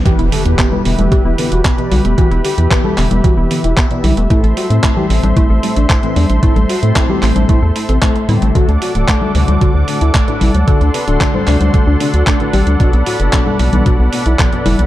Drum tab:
HH |xxoxx-oxx-oxxxox|xxoxx-oxx-oxxxox|xxoxx-oxx-oxxxox|xxoxx-oxx-oxxxox|
CP |----x-------x---|----x-x-----x---|----x-------x---|----x-x-----x---|
CG |-----o-o------o-|-----o-o------o-|-----o-o------o-|-o---o-o------o-|
BD |o---o---o---o---|o---o---o---o---|o---o---o---o---|o---o---o---o---|

HH |xxoxx-oxx-oxxxox|xxoxx-oxx-oxxxox|xxoxx-oxx-oxxxox|
CP |----x-------x---|----x-x-----x---|----x-------x---|
CG |-----o-o------o-|-----o-o------o-|-----o-o------o-|
BD |o---o---o---o---|o---o---o---o---|o---o---o---o---|